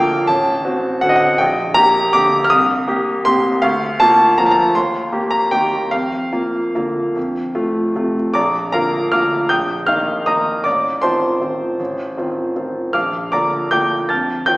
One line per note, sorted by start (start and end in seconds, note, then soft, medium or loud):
0.00 0.31 A#1 medium
0.00 0.25 D3 medium
0.00 0.31 A#3 medium
0.00 0.31 F4 medium
0.00 0.31 D5 loud
0.00 0.31 F5 loud
0.00 0.28 G5 loud
0.27 0.64 A1 medium
0.27 1.02 A5 loud
0.65 0.99 C4 medium
0.65 0.99 F#4 medium
1.01 1.36 D3 medium
1.01 1.36 C4 medium
1.01 1.36 F#4 medium
1.01 1.09 F#5 loud
1.09 1.16 D#5 medium
1.16 1.39 F#5 medium
1.38 1.75 A#1 medium
1.38 1.76 G5 loud
1.74 2.10 A#3 medium
1.74 2.10 G4 medium
1.74 2.13 A#5 loud
2.13 2.47 D3 medium
2.13 2.48 A#3 medium
2.13 2.48 G4 medium
2.13 2.44 D6 loud
2.44 2.51 F6 loud
2.50 2.87 C2 medium
2.50 3.26 D#6 loud
2.87 3.22 A#3 medium
2.87 3.23 G4 medium
3.25 3.59 C3 medium
3.25 3.59 A#3 medium
3.25 3.60 G4 medium
3.25 3.62 C6 loud
3.62 3.99 D2 medium
3.62 4.00 F5 loud
4.00 4.35 A#3 medium
4.00 4.35 F4 medium
4.00 4.38 A5 loud
4.38 4.72 F3 medium
4.38 4.72 A#3 medium
4.38 4.72 F4 medium
4.38 4.45 A#5 medium
4.46 4.53 A5 medium
4.51 4.75 A#5 medium
4.75 5.12 D#2 medium
4.75 5.32 C6 medium
5.12 5.48 A#3 medium
5.12 5.48 G4 medium
5.31 5.52 A#5 medium
5.51 5.88 D#3 medium
5.51 5.89 A#3 medium
5.51 5.89 G4 medium
5.51 5.92 G5 loud
5.91 6.31 F2 medium
5.91 8.15 F5 loud
6.33 6.71 A#3 medium
6.33 6.71 F4 medium
6.75 7.12 D3 medium
6.75 7.12 A#3 medium
6.75 7.12 F4 medium
7.16 7.54 F2 medium
7.55 7.91 A3 medium
7.55 7.91 F4 medium
7.95 8.31 C3 medium
7.95 8.31 A3 medium
7.95 8.31 F4 medium
8.34 8.72 A#1 medium
8.34 8.71 D5 medium
8.34 8.71 A#5 medium
8.34 8.73 D6 medium
8.72 9.09 D3 medium
8.72 9.09 A#3 medium
8.72 9.09 F4 medium
8.72 9.10 A#4 medium
8.72 9.10 F5 medium
8.72 9.12 A#5 medium
9.12 9.47 D3 soft
9.12 9.47 A#3 medium
9.12 9.47 F4 medium
9.12 9.48 F5 medium
9.12 9.48 D6 medium
9.12 9.50 F6 loud
9.49 9.87 A#1 medium
9.49 9.85 G5 medium
9.49 9.85 D#6 medium
9.49 9.87 G6 loud
9.87 10.23 D#3 medium
9.87 10.24 A#3 medium
9.87 10.24 D#4 medium
9.87 10.25 F5 medium
9.87 10.27 F6 loud
10.26 10.62 D#3 soft
10.26 10.61 A#3 soft
10.26 10.62 D#4 medium
10.26 10.63 D#5 medium
10.26 10.62 A#5 medium
10.26 10.65 D#6 medium
10.64 11.01 A1 medium
10.64 11.00 D5 medium
10.64 11.02 D6 medium
11.02 11.37 D#3 medium
11.02 11.37 C4 soft
11.02 11.38 F4 medium
11.02 12.90 C5 medium
11.02 12.90 A5 medium
11.02 12.94 C6 loud
11.41 11.75 D#3 soft
11.41 11.75 C4 medium
11.41 11.76 F4 medium
11.79 12.16 A1 medium
12.17 12.52 D#3 soft
12.17 12.52 C4 medium
12.17 12.52 F4 medium
12.55 12.90 D#3 soft
12.55 12.91 C4 soft
12.55 12.91 F4 medium
12.93 13.31 A#1 medium
12.93 13.30 F5 medium
12.93 13.30 D6 medium
12.93 13.32 F6 medium
13.32 13.68 D3 medium
13.32 13.68 A#3 soft
13.32 13.69 F4 medium
13.32 13.69 D5 medium
13.32 13.69 A#5 medium
13.32 13.71 D6 medium
13.71 14.06 D3 medium
13.71 14.06 A#3 soft
13.71 14.07 F4 soft
13.71 14.07 G5 medium
13.71 14.07 D6 medium
13.71 14.10 G6 medium
14.09 14.46 F2 medium
14.09 14.45 A5 medium
14.09 14.45 F6 medium
14.09 14.47 A6 medium
14.46 14.57 D#3 medium
14.46 14.57 C4 soft
14.46 14.57 F4 medium
14.46 14.57 G5 medium
14.46 14.57 G6 loud